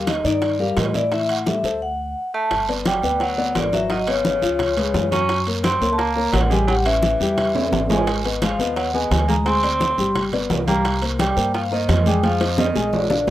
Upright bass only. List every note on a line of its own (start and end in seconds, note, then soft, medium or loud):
0.00 0.19 D#2 medium
0.24 0.73 G2 medium
0.77 1.58 A2 medium
1.64 2.12 D2 medium
2.51 3.00 G1 medium
3.03 3.52 D2 medium
3.55 4.37 G#1 medium
4.42 4.91 C#2 medium
4.94 5.75 F#2 loud
5.81 6.29 C#2 medium
6.33 7.14 A1 medium
7.20 7.69 E2 loud
7.72 8.53 G#1 medium
8.59 9.08 D#2 medium
9.11 9.92 D2 medium
9.98 10.46 G1 medium
10.50 11.31 C2 medium
11.37 11.85 G2 loud
11.89 12.70 F2 loud
12.76 13.24 A#1 medium